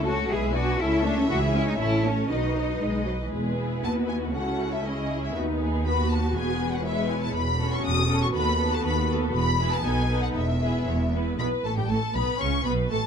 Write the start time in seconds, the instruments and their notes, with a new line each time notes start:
Already playing: double bass section C#2, violin section A4
0.04 viola section A3 C#4, cello section F#4, violin section C#5 A5
0.29 double bass section B1, viola section G#3 E4, cello section G#4, violin section B4 E5
0.53 viola section B3 D4, cello section F#4, violin section D5 G#5
0.78 double bass section C#2, viola section C#4 E4, cello section E4, violin section A4 E5
1.04 viola section A3 C#4, cello section D4, violin section C#5 A5
1.18 cello section C#4
1.29 double bass section C#2, viola section E3 E4, cello section F#4, violin section G#4 E5
1.54 viola section G#3 C#4, cello section E4, violin section C#5 G#5
1.67 cello section D#4
1.79 double bass section A1, viola section C#4 E4, cello section E4, violin section A4 C#5 E5
2.06 viola section A3 C#4, cello section C#4, violin section C#5 A5
2.29 double bass section B1, viola section D#3 F#4, cello section D#4, violin section B4 D#5
2.57 viola section F#3 D#4, violin section B4 D#5
2.82 double bass section B1, viola section G#3, violin section B4 D#5
3.07 viola section F#3, violin section B4 D#5
3.22 viola section E3
3.32 double bass section E1, cello section E2, viola section G#3 E4, violin section G#4 B4
3.59 viola section B3
3.84 double bass section D#2, cello section D#2, violin section F#4 A5
4.09 violin section G#5
4.34 double bass section C#2, cello section C#2, viola section C#4 F#4, violin section E4 A4 F#5
4.73 violin section E5
4.85 viola section C#4 E4, violin section G#4 D#5
5.24 violin section E5
5.36 double bass section D#2, cello section D#2, viola section B3 D#4, violin section F#4 B4
5.61 violin section G#4
5.85 viola section F#4, violin section F#4 B4 B5
6.10 violin section A5
6.34 double bass section E1, cello section E2, viola section B3, violin section G#4 B4 G#5
6.72 violin section F#5
6.85 viola section G#3 E4, violin section B4 C#5 E5
7.09 violin section G#5
7.22 violin section A5
7.34 double bass section E1, cello section E2, violin section B5
7.59 viola section C#4 F#4, violin section A4
7.72 violin section C#6
7.84 double bass section E1, cello section E2, violin section D#6
8.08 viola section C#4 F#4, violin section A4
8.22 violin section C#6
8.33 cello section D#2, double bass section D#2, viola section B3 F#4, violin section A4 B4 B5
8.58 viola section B3 F#4, violin section A4 B4
8.73 violin section A5
8.83 double bass section D#2, cello section D#2, violin section B5
9.08 viola section B3 F#4, violin section A4 B4
9.33 double bass section E1, cello section E2, violin section B5
9.59 viola section B3 E4, violin section G#4 B4
9.72 violin section A5
9.84 double bass section B1, cello section B2, viola section B3 D#4, violin section A4 B4 G#5
10.09 viola section B3 D#4, violin section A4 B4
10.22 violin section F#5
10.35 double bass section E1, cello section E2, violin section E5
10.61 viola section B3 E4, violin section G#4 B4
10.86 double bass section E1, cello section E2, violin section C#5
11.13 viola section B3 E4, violin section B4
11.38 double bass section B1, cello section B2, viola section B3, violin section B4 B5
11.63 double bass section A1, cello section A2, viola section A3, violin section A4 A5
11.76 cello section G2, viola section G3, violin section G4 G5
11.87 double bass section A1, cello section A2, viola section A3, violin section A4 A5
12.14 double bass section B1, cello section B2, viola section B3, violin section B4 B5
12.39 double bass section C#2, cello section C#3, viola section C#4, violin section C#5 C#6
12.65 double bass section B1, cello section B2, viola section B3, violin section B4 B5
12.90 double bass section A1, cello section A2, viola section A3, violin section A4 A5